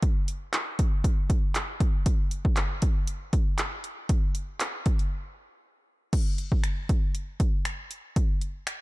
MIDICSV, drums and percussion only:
0, 0, Header, 1, 2, 480
1, 0, Start_track
1, 0, Tempo, 508475
1, 25, Time_signature, 4, 2, 24, 8
1, 8319, End_track
2, 0, Start_track
2, 0, Title_t, "Drums"
2, 24, Note_on_c, 9, 36, 113
2, 24, Note_on_c, 9, 42, 103
2, 118, Note_off_c, 9, 42, 0
2, 119, Note_off_c, 9, 36, 0
2, 265, Note_on_c, 9, 42, 90
2, 359, Note_off_c, 9, 42, 0
2, 504, Note_on_c, 9, 39, 115
2, 505, Note_on_c, 9, 42, 99
2, 598, Note_off_c, 9, 39, 0
2, 599, Note_off_c, 9, 42, 0
2, 745, Note_on_c, 9, 42, 83
2, 747, Note_on_c, 9, 36, 97
2, 839, Note_off_c, 9, 42, 0
2, 841, Note_off_c, 9, 36, 0
2, 984, Note_on_c, 9, 36, 98
2, 986, Note_on_c, 9, 42, 107
2, 1079, Note_off_c, 9, 36, 0
2, 1081, Note_off_c, 9, 42, 0
2, 1225, Note_on_c, 9, 36, 101
2, 1225, Note_on_c, 9, 42, 85
2, 1319, Note_off_c, 9, 36, 0
2, 1320, Note_off_c, 9, 42, 0
2, 1463, Note_on_c, 9, 42, 96
2, 1464, Note_on_c, 9, 39, 122
2, 1558, Note_off_c, 9, 39, 0
2, 1558, Note_off_c, 9, 42, 0
2, 1703, Note_on_c, 9, 42, 80
2, 1704, Note_on_c, 9, 36, 97
2, 1798, Note_off_c, 9, 36, 0
2, 1798, Note_off_c, 9, 42, 0
2, 1944, Note_on_c, 9, 42, 104
2, 1945, Note_on_c, 9, 36, 112
2, 2039, Note_off_c, 9, 42, 0
2, 2040, Note_off_c, 9, 36, 0
2, 2183, Note_on_c, 9, 42, 88
2, 2277, Note_off_c, 9, 42, 0
2, 2312, Note_on_c, 9, 36, 93
2, 2406, Note_off_c, 9, 36, 0
2, 2421, Note_on_c, 9, 39, 114
2, 2422, Note_on_c, 9, 42, 98
2, 2516, Note_off_c, 9, 39, 0
2, 2516, Note_off_c, 9, 42, 0
2, 2662, Note_on_c, 9, 42, 87
2, 2666, Note_on_c, 9, 36, 102
2, 2756, Note_off_c, 9, 42, 0
2, 2761, Note_off_c, 9, 36, 0
2, 2903, Note_on_c, 9, 42, 109
2, 2997, Note_off_c, 9, 42, 0
2, 3143, Note_on_c, 9, 42, 87
2, 3144, Note_on_c, 9, 36, 100
2, 3237, Note_off_c, 9, 42, 0
2, 3239, Note_off_c, 9, 36, 0
2, 3383, Note_on_c, 9, 39, 120
2, 3383, Note_on_c, 9, 42, 99
2, 3477, Note_off_c, 9, 42, 0
2, 3478, Note_off_c, 9, 39, 0
2, 3624, Note_on_c, 9, 42, 81
2, 3719, Note_off_c, 9, 42, 0
2, 3864, Note_on_c, 9, 42, 98
2, 3865, Note_on_c, 9, 36, 109
2, 3958, Note_off_c, 9, 42, 0
2, 3959, Note_off_c, 9, 36, 0
2, 4104, Note_on_c, 9, 42, 91
2, 4198, Note_off_c, 9, 42, 0
2, 4344, Note_on_c, 9, 39, 114
2, 4345, Note_on_c, 9, 42, 101
2, 4439, Note_off_c, 9, 39, 0
2, 4440, Note_off_c, 9, 42, 0
2, 4585, Note_on_c, 9, 42, 83
2, 4588, Note_on_c, 9, 36, 101
2, 4679, Note_off_c, 9, 42, 0
2, 4682, Note_off_c, 9, 36, 0
2, 4713, Note_on_c, 9, 42, 53
2, 4807, Note_off_c, 9, 42, 0
2, 5786, Note_on_c, 9, 36, 105
2, 5786, Note_on_c, 9, 42, 91
2, 5786, Note_on_c, 9, 49, 86
2, 5881, Note_off_c, 9, 36, 0
2, 5881, Note_off_c, 9, 42, 0
2, 5881, Note_off_c, 9, 49, 0
2, 6025, Note_on_c, 9, 42, 82
2, 6120, Note_off_c, 9, 42, 0
2, 6153, Note_on_c, 9, 36, 84
2, 6247, Note_off_c, 9, 36, 0
2, 6264, Note_on_c, 9, 26, 101
2, 6265, Note_on_c, 9, 42, 91
2, 6358, Note_off_c, 9, 26, 0
2, 6359, Note_off_c, 9, 42, 0
2, 6507, Note_on_c, 9, 42, 79
2, 6508, Note_on_c, 9, 36, 96
2, 6601, Note_off_c, 9, 42, 0
2, 6602, Note_off_c, 9, 36, 0
2, 6746, Note_on_c, 9, 42, 105
2, 6841, Note_off_c, 9, 42, 0
2, 6984, Note_on_c, 9, 42, 82
2, 6985, Note_on_c, 9, 36, 91
2, 7079, Note_off_c, 9, 42, 0
2, 7080, Note_off_c, 9, 36, 0
2, 7224, Note_on_c, 9, 26, 107
2, 7224, Note_on_c, 9, 42, 95
2, 7318, Note_off_c, 9, 42, 0
2, 7319, Note_off_c, 9, 26, 0
2, 7464, Note_on_c, 9, 42, 76
2, 7558, Note_off_c, 9, 42, 0
2, 7705, Note_on_c, 9, 42, 92
2, 7706, Note_on_c, 9, 36, 109
2, 7800, Note_off_c, 9, 36, 0
2, 7800, Note_off_c, 9, 42, 0
2, 7943, Note_on_c, 9, 42, 83
2, 8038, Note_off_c, 9, 42, 0
2, 8183, Note_on_c, 9, 26, 106
2, 8184, Note_on_c, 9, 42, 94
2, 8277, Note_off_c, 9, 26, 0
2, 8278, Note_off_c, 9, 42, 0
2, 8319, End_track
0, 0, End_of_file